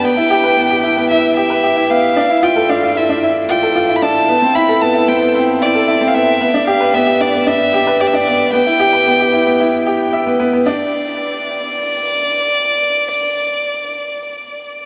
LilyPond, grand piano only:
\new Staff \with { instrumentName = "Grand piano" } { \time 4/4 \key e \phrygian \tempo 4 = 113 b16 e'16 g'16 b'16 b16 g'16 e'16 b16 e'16 r16 g'16 b'16 g'16 e'16 b16 r16 | d'16 e'16 f'16 a'16 d'16 f'16 e'16 d'16 e'16 r16 f'16 a'16 f'16 e'16 d'16 r16 | b16 c'16 e'16 a'16 b16 e'16 c'16 b16 c'16 r16 e'16 a'16 e'16 c'16 b16 r16 | b16 d'16 g'16 b'16 b16 g'16 d'16 b16 d'16 r16 g'16 b'16 g'16 d'16 b16 r16 |
b16 e'16 g'16 b'16 b16 g'16 e'16 b16 e'16 r16 g'16 r16 e''16 b16 b16 b16 | d'8 r2. r8 | r1 | }